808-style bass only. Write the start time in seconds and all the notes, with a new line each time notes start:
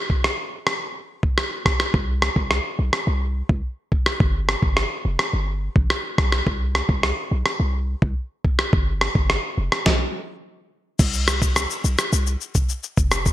1.94 C2
2.36 C2
2.79 B1
3.07 C2
3.49 C2
4.20 G1
4.63 G1
5.05 F1
5.33 G1
5.76 A1
6.18 B1
6.47 C2
6.89 C2
7.31 B1
7.60 C2
8.02 C2
8.73 G1
9.15 G1
9.58 F1
10.99 C2
11.84 B1
12.13 C2
12.97 F1
13.26 G1